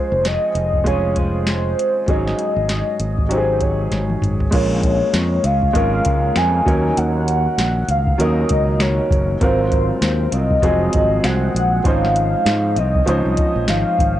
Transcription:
Already playing: F3 G#3 C#4 F4 G#4 C5
0.12 F1
0.24 F3 C4 C#4 G#4 D#5, snare, closed hi-hat
0.55 F1, closed hi-hat
0.74 kick
0.84 F3 G#3 C#4 F4 G#4 C#5, kick, closed hi-hat
1.15 C4 C#4 G#4 C5, kick, closed hi-hat
1.47 snare, closed hi-hat
1.79 closed hi-hat
2.06 G#1 G#2 F#3 C#4 D#4 G#4 D#5, kick, closed hi-hat
2.11 D#4
2.27 snare
2.39 closed hi-hat
2.56 G#1
2.69 snare, closed hi-hat
3.00 G#1, closed hi-hat
3.18 kick
3.29 G#2 F#3 C#4 D#4 G4 C5, closed hi-hat
3.33 D#4
3.38 G#4
3.61 C#5, kick, closed hi-hat
3.91 G#1, snare, closed hi-hat
4.10 high tom
4.22 G#1, closed hi-hat, mid tom
4.40 floor tom
4.51 A#1 A#2 G#3 C#4 F4 A#4 C#5, kick, closed hi-hat, crash
4.83 kick, closed hi-hat
5.14 F2, snare, closed hi-hat
5.43 C#2 G#3 C#4 F4 F5, closed hi-hat
5.63 kick
5.73 G#1 A#2 G#3 C#4 F4 A#4, kick, closed hi-hat
5.77 F4
6.05 C#2, kick, closed hi-hat
6.35 F2 A#2 G#3 C#4 F4 G#5, snare, closed hi-hat
6.65 D#2 F#3 A#3 C#4 D#4 F#4 A#4, kick, closed hi-hat
6.70 D#3
6.97 D#2 F#5, closed hi-hat
7.28 closed hi-hat
7.58 A#1, snare, closed hi-hat
7.88 C#2 F5, closed hi-hat
8.07 kick
8.18 D#2 D#3 F#3 A#3 C#4 D#4 F#4 A#4 D#5, closed hi-hat
8.49 C#2, kick, closed hi-hat
8.79 D#3 A#3 C#4 F#4 C#5, snare, closed hi-hat
9.11 F#1, kick, closed hi-hat
9.40 G#1 G#2 F#3 C4 F4 A#4 C5, kick, closed hi-hat
9.72 kick, closed hi-hat
10.02 D#2, snare, closed hi-hat
10.31 C2 F#3 C4 F4 D#5, closed hi-hat
10.51 kick
10.61 F1 G#2 F3 F#3 C4 F4 G#4, kick, closed hi-hat
10.93 G#1, kick, closed hi-hat
11.23 C2 G#2 F#3 C4 F#5, snare, closed hi-hat
11.55 A#1, closed hi-hat
11.84 G#1 G#2 F3 C4 C#4 D#4 C5 F5, kick, closed hi-hat
12.05 snare
12.16 closed hi-hat
12.46 G#2, snare, closed hi-hat
12.76 C2 F3 C4 D#4 D#5, closed hi-hat
12.95 kick
13.06 C#2 G#2 F3 C4 C#4 D#4 C5 D#5, closed hi-hat
13.25 C2
13.37 kick, closed hi-hat
13.56 A#1
13.67 G#1 G#2 F3 C4 D#4 F5, snare, closed hi-hat
13.99 G#1, kick, closed hi-hat

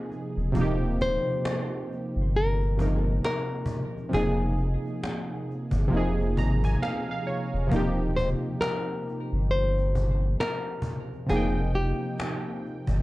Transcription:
Already playing: C3 F3 A#3 D#4 G#4
0.12 cajon slap
0.37 E1, cajon slap
0.52 D#1 C3 F3, cajon bass
0.56 A#3 D#4
0.61 G4
1.01 C5, cajon bass
1.28 cajon slap
1.45 cajon slap
1.93 cajon slap
2.16 G1
2.36 A#4, cajon slap
2.62 cajon slap
2.77 C3 F3 A#3 D#4, cajon bass
2.82 A#4
3.25 A#4, cajon slap
3.66 cajon bass
3.97 cajon slap
4.09 C3 F3
4.13 F1 A#3 D#4 G#4, cajon bass
4.18 G#4
4.58 cajon slap
4.86 cajon slap
5.03 cajon slap
5.51 cajon slap
5.71 G1, cajon bass
5.88 C3 F3
5.92 F1 A#3 D#4, cajon slap
5.97 G#4
6.20 cajon slap
6.37 G#1 A#5, cajon bass
6.64 G#5, cajon bass
6.82 F5, cajon slap
7.11 F5
7.27 C#5, cajon slap
7.54 E1, cajon slap
7.67 C3 F3
7.71 D#1 A#3 D#4, cajon bass
7.76 G4
8.16 C5, cajon bass
8.44 cajon slap
8.61 A#4, cajon slap
9.09 cajon slap
9.32 G1
9.51 C5, cajon slap
9.78 cajon slap
9.95 cajon bass
10.40 A#4, cajon slap
10.82 cajon bass
11.14 cajon slap
11.27 F1 C3 F3 G#4, cajon bass
11.31 A#3 D#4
11.36 G5
11.74 G4, cajon slap
12.02 cajon slap
12.20 cajon slap
12.67 cajon slap
12.87 G1, cajon bass

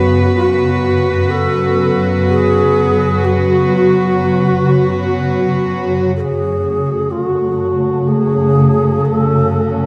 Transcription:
Already playing: F#2 C#3 F#3 B3 F#4 B4
0.35 F#4
1.30 A4
2.28 G#4
3.24 F#4
3.71 F#4
6.16 F#2 C#3 A3 A4
6.20 G#4
7.11 F4
7.24 F#4
7.47 A3
8.06 C#4 G#4
9.05 A4

